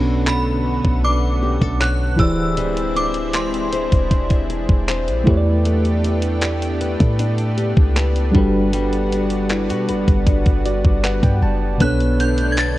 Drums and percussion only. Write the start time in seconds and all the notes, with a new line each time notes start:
0.27 clap
0.85 kick
1.61 kick
1.81 clap
2.19 kick
2.57 closed hi-hat
2.77 closed hi-hat
2.97 closed hi-hat
3.14 closed hi-hat
3.34 clap, closed hi-hat
3.54 closed hi-hat
3.73 closed hi-hat
3.92 kick, closed hi-hat
4.11 kick, closed hi-hat
4.30 kick, closed hi-hat
4.50 closed hi-hat
4.69 kick
4.88 clap, closed hi-hat
5.08 closed hi-hat
5.27 kick
5.65 closed hi-hat
5.85 closed hi-hat
6.04 closed hi-hat
6.22 closed hi-hat
6.41 clap, closed hi-hat
6.62 closed hi-hat
6.81 closed hi-hat
7.00 kick, closed hi-hat
7.19 closed hi-hat
7.38 closed hi-hat
7.58 closed hi-hat
7.77 kick
7.96 clap, closed hi-hat
8.16 closed hi-hat
8.35 kick
8.73 closed hi-hat
8.93 closed hi-hat
9.12 closed hi-hat
9.30 closed hi-hat
9.49 clap, closed hi-hat
9.70 closed hi-hat
9.89 closed hi-hat
10.08 kick, closed hi-hat
10.27 kick, closed hi-hat
10.46 kick, closed hi-hat
10.65 closed hi-hat
10.85 kick
11.04 clap, closed hi-hat
11.23 kick, closed hi-hat
11.80 kick, closed hi-hat
12.00 closed hi-hat
12.20 closed hi-hat
12.38 closed hi-hat
12.57 clap, closed hi-hat